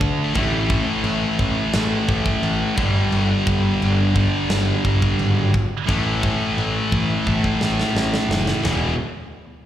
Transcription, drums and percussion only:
0.01 kick medium
0.35 kick loud
0.35 china medium
0.70 kick medium
1.04 china medium
1.39 kick medium
1.73 snare loud
1.73 china soft
2.09 kick medium
2.26 kick medium
2.43 china medium
2.78 kick loud
3.12 china medium
3.47 kick loud
3.82 china medium
4.16 kick medium
4.50 snare loud
4.50 china medium
4.85 kick medium
5.02 kick medium
5.19 china medium
5.54 kick medium
5.88 kick loud
5.88 china medium
6.23 kick medium
6.58 china medium
6.92 kick medium
7.27 kick medium
7.44 kick medium
7.61 snare medium
7.80 snare medium
7.96 snare medium
8.14 snare medium
8.31 snare medium
8.47 snare medium
8.65 snare medium
8.65 floor tom loud

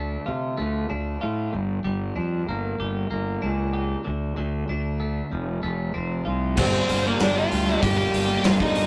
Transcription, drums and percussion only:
6.57 kick loud
6.57 crash loud
6.89 open hi-hat medium
7.20 snare loud
7.20 open hi-hat medium
7.52 open hi-hat medium
7.82 kick loud
7.82 open hi-hat medium
8.14 open hi-hat medium
8.44 snare loud
8.44 open hi-hat medium
8.60 kick medium
8.75 open hi-hat medium

